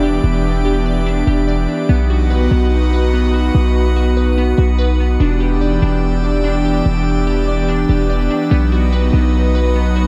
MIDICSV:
0, 0, Header, 1, 5, 480
1, 0, Start_track
1, 0, Key_signature, 1, "minor"
1, 0, Tempo, 413793
1, 273, Time_signature, 4, 2, 24, 8
1, 11682, End_track
2, 0, Start_track
2, 0, Title_t, "Synth texture"
2, 0, Program_c, 0, 99
2, 0, Note_on_c, 0, 67, 84
2, 0, Note_on_c, 0, 76, 75
2, 0, Note_on_c, 0, 86, 94
2, 2155, Note_off_c, 0, 67, 0
2, 2155, Note_off_c, 0, 76, 0
2, 2155, Note_off_c, 0, 86, 0
2, 2193, Note_on_c, 0, 71, 80
2, 2193, Note_on_c, 0, 87, 87
2, 2194, Note_on_c, 0, 78, 73
2, 5994, Note_off_c, 0, 71, 0
2, 5994, Note_off_c, 0, 87, 0
2, 5995, Note_off_c, 0, 78, 0
2, 6034, Note_on_c, 0, 74, 82
2, 6034, Note_on_c, 0, 79, 74
2, 6034, Note_on_c, 0, 88, 91
2, 9834, Note_off_c, 0, 74, 0
2, 9834, Note_off_c, 0, 79, 0
2, 9835, Note_off_c, 0, 88, 0
2, 9874, Note_on_c, 0, 71, 82
2, 9874, Note_on_c, 0, 78, 77
2, 9874, Note_on_c, 0, 87, 95
2, 11682, Note_off_c, 0, 71, 0
2, 11682, Note_off_c, 0, 78, 0
2, 11682, Note_off_c, 0, 87, 0
2, 11682, End_track
3, 0, Start_track
3, 0, Title_t, "Synth keys"
3, 0, Program_c, 1, 88
3, 0, Note_on_c, 1, 62, 91
3, 0, Note_on_c, 1, 74, 82
3, 30, Note_on_c, 1, 67, 80
3, 738, Note_off_c, 1, 67, 0
3, 752, Note_on_c, 1, 67, 89
3, 980, Note_off_c, 1, 74, 0
3, 994, Note_on_c, 1, 74, 82
3, 1219, Note_off_c, 1, 62, 0
3, 1233, Note_on_c, 1, 62, 96
3, 1462, Note_off_c, 1, 67, 0
3, 1476, Note_on_c, 1, 67, 86
3, 1698, Note_off_c, 1, 74, 0
3, 1712, Note_on_c, 1, 74, 92
3, 1937, Note_off_c, 1, 62, 0
3, 1950, Note_on_c, 1, 62, 76
3, 2191, Note_off_c, 1, 62, 0
3, 2191, Note_on_c, 1, 59, 106
3, 2192, Note_off_c, 1, 74, 0
3, 2194, Note_off_c, 1, 67, 0
3, 2435, Note_on_c, 1, 66, 86
3, 2671, Note_on_c, 1, 71, 89
3, 2905, Note_off_c, 1, 59, 0
3, 2919, Note_on_c, 1, 59, 75
3, 3383, Note_off_c, 1, 71, 0
3, 3397, Note_on_c, 1, 71, 84
3, 3622, Note_off_c, 1, 59, 0
3, 3636, Note_on_c, 1, 59, 80
3, 3857, Note_off_c, 1, 66, 0
3, 3871, Note_on_c, 1, 66, 87
3, 4582, Note_off_c, 1, 66, 0
3, 4596, Note_on_c, 1, 66, 84
3, 4820, Note_off_c, 1, 71, 0
3, 4834, Note_on_c, 1, 71, 85
3, 5060, Note_off_c, 1, 59, 0
3, 5074, Note_on_c, 1, 59, 90
3, 5293, Note_off_c, 1, 66, 0
3, 5307, Note_on_c, 1, 66, 83
3, 5537, Note_off_c, 1, 71, 0
3, 5550, Note_on_c, 1, 71, 106
3, 5788, Note_off_c, 1, 59, 0
3, 5802, Note_on_c, 1, 59, 75
3, 6030, Note_off_c, 1, 66, 0
3, 6030, Note_on_c, 1, 62, 92
3, 6031, Note_off_c, 1, 71, 0
3, 6037, Note_off_c, 1, 59, 0
3, 6266, Note_on_c, 1, 67, 79
3, 6508, Note_on_c, 1, 74, 84
3, 6737, Note_off_c, 1, 62, 0
3, 6751, Note_on_c, 1, 62, 82
3, 7219, Note_off_c, 1, 74, 0
3, 7233, Note_on_c, 1, 74, 83
3, 7456, Note_off_c, 1, 62, 0
3, 7470, Note_on_c, 1, 62, 90
3, 7697, Note_off_c, 1, 67, 0
3, 7711, Note_on_c, 1, 67, 84
3, 8418, Note_off_c, 1, 67, 0
3, 8432, Note_on_c, 1, 67, 88
3, 8660, Note_off_c, 1, 74, 0
3, 8674, Note_on_c, 1, 74, 82
3, 8900, Note_off_c, 1, 62, 0
3, 8914, Note_on_c, 1, 62, 96
3, 9142, Note_off_c, 1, 67, 0
3, 9156, Note_on_c, 1, 67, 84
3, 9377, Note_off_c, 1, 74, 0
3, 9391, Note_on_c, 1, 74, 90
3, 9616, Note_off_c, 1, 62, 0
3, 9630, Note_on_c, 1, 62, 81
3, 9871, Note_off_c, 1, 62, 0
3, 9871, Note_on_c, 1, 59, 103
3, 9872, Note_off_c, 1, 74, 0
3, 9874, Note_off_c, 1, 67, 0
3, 10115, Note_on_c, 1, 66, 89
3, 10351, Note_on_c, 1, 71, 95
3, 10585, Note_off_c, 1, 59, 0
3, 10599, Note_on_c, 1, 59, 75
3, 11062, Note_off_c, 1, 71, 0
3, 11076, Note_on_c, 1, 71, 88
3, 11301, Note_off_c, 1, 59, 0
3, 11315, Note_on_c, 1, 59, 85
3, 11537, Note_off_c, 1, 66, 0
3, 11551, Note_on_c, 1, 66, 85
3, 11682, Note_off_c, 1, 59, 0
3, 11682, Note_off_c, 1, 66, 0
3, 11682, Note_off_c, 1, 71, 0
3, 11682, End_track
4, 0, Start_track
4, 0, Title_t, "Analog synth pad"
4, 0, Program_c, 2, 89
4, 0, Note_on_c, 2, 52, 79
4, 0, Note_on_c, 2, 59, 73
4, 0, Note_on_c, 2, 62, 76
4, 0, Note_on_c, 2, 67, 89
4, 2154, Note_off_c, 2, 52, 0
4, 2154, Note_off_c, 2, 59, 0
4, 2154, Note_off_c, 2, 62, 0
4, 2154, Note_off_c, 2, 67, 0
4, 2192, Note_on_c, 2, 63, 75
4, 2193, Note_on_c, 2, 59, 78
4, 2193, Note_on_c, 2, 66, 88
4, 5994, Note_off_c, 2, 59, 0
4, 5994, Note_off_c, 2, 63, 0
4, 5994, Note_off_c, 2, 66, 0
4, 6032, Note_on_c, 2, 52, 76
4, 6032, Note_on_c, 2, 59, 73
4, 6032, Note_on_c, 2, 62, 73
4, 6032, Note_on_c, 2, 67, 85
4, 9834, Note_off_c, 2, 52, 0
4, 9834, Note_off_c, 2, 62, 0
4, 9834, Note_off_c, 2, 67, 0
4, 9873, Note_on_c, 2, 54, 78
4, 9873, Note_on_c, 2, 63, 87
4, 11682, Note_off_c, 2, 54, 0
4, 11682, Note_off_c, 2, 59, 0
4, 11682, Note_off_c, 2, 63, 0
4, 11682, End_track
5, 0, Start_track
5, 0, Title_t, "808-style bass"
5, 0, Program_c, 3, 38
5, 0, Note_on_c, 3, 28, 104
5, 226, Note_off_c, 3, 28, 0
5, 273, Note_on_c, 3, 28, 115
5, 1426, Note_off_c, 3, 28, 0
5, 1473, Note_on_c, 3, 28, 101
5, 1933, Note_off_c, 3, 28, 0
5, 2192, Note_on_c, 3, 35, 110
5, 2884, Note_off_c, 3, 35, 0
5, 2912, Note_on_c, 3, 35, 107
5, 4066, Note_off_c, 3, 35, 0
5, 4112, Note_on_c, 3, 35, 108
5, 5266, Note_off_c, 3, 35, 0
5, 5312, Note_on_c, 3, 35, 105
5, 6004, Note_off_c, 3, 35, 0
5, 6032, Note_on_c, 3, 28, 110
5, 6723, Note_off_c, 3, 28, 0
5, 6752, Note_on_c, 3, 28, 106
5, 7906, Note_off_c, 3, 28, 0
5, 7952, Note_on_c, 3, 28, 108
5, 9106, Note_off_c, 3, 28, 0
5, 9153, Note_on_c, 3, 28, 109
5, 9613, Note_off_c, 3, 28, 0
5, 9872, Note_on_c, 3, 35, 108
5, 10563, Note_off_c, 3, 35, 0
5, 10592, Note_on_c, 3, 35, 110
5, 11682, Note_off_c, 3, 35, 0
5, 11682, End_track
0, 0, End_of_file